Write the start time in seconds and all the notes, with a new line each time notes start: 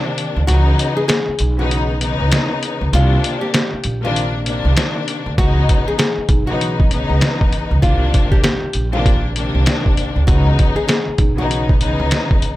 Already playing: C3 D#3 A#3 D4
0.18 closed hi-hat
0.36 D2
0.47 C#2 C#3 E3 B3 D#4 F#4, closed hi-hat
0.79 closed hi-hat
0.97 G#4
1.08 G#4, snare, closed hi-hat
1.28 muted upright bass stroke
1.39 B1, closed hi-hat
1.58 C#3 E3 B3 D#4 F#4
1.71 closed hi-hat
2.01 C#3 E3 B3 D#4, closed hi-hat
2.20 C#2
2.32 snare, closed hi-hat
2.63 closed hi-hat
2.81 C#2
2.92 C2 C3 D#3 A#3 D4 F4, closed hi-hat
3.24 closed hi-hat
3.41 G4
3.54 G4, snare, closed hi-hat
3.73 muted upright bass stroke
3.84 A#1, closed hi-hat
4.03 C3 D#3 A#3 D4 F4
4.16 closed hi-hat
4.45 C3 D#3 A#3 D4, closed hi-hat
4.65 C2
4.77 snare, closed hi-hat
5.08 closed hi-hat
5.26 D2
5.37 C#2 C#3 E3 B3 D#4 F#4, kick, closed hi-hat
5.69 kick, closed hi-hat
5.88 G#4
5.98 G#4, snare, closed hi-hat
6.18 muted upright bass stroke
6.29 B1, kick, closed hi-hat
6.47 C#3 E3 B3 D#4 F#4
6.61 closed hi-hat
6.80 kick
6.90 C#3 E3 B3 D#4, closed hi-hat
7.10 C#2
7.21 snare, closed hi-hat
7.41 kick
7.53 closed hi-hat
7.71 C#2
7.81 C2 C3 D#3 A#3 D4 F4, kick, closed hi-hat
8.14 kick, closed hi-hat
8.32 G4, kick
8.43 G4, snare, closed hi-hat
8.63 muted upright bass stroke
8.73 A#1, closed hi-hat
8.92 C3 D#3 A#3 D4 F4
9.06 kick, closed hi-hat
9.34 C3 D#3 A#3 D4, closed hi-hat
9.55 C2
9.66 snare, closed hi-hat
9.86 kick
9.97 closed hi-hat
10.16 D2
10.27 C#2 C#3 E3 B3 D#4 F#4, kick, closed hi-hat
10.59 kick, closed hi-hat
10.76 G#4
10.88 G#4, snare, closed hi-hat
11.08 muted upright bass stroke
11.18 B1, kick, closed hi-hat
11.37 C#3 E3 B3 D#4 F#4
11.51 closed hi-hat
11.69 kick
11.80 C#3 E3 B3 D#4, closed hi-hat
12.00 C#2
12.11 snare, closed hi-hat
12.31 kick
12.42 closed hi-hat